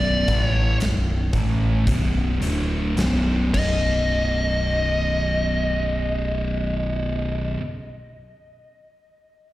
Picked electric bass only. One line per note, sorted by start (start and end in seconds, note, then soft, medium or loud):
0.00 0.24 B0 loud
0.28 0.77 A1 medium
0.80 1.29 B0 medium
1.33 1.83 A1 medium
1.86 2.38 B0 medium
2.40 2.93 D1 medium
2.96 3.49 B0 loud
3.54 7.54 B0 medium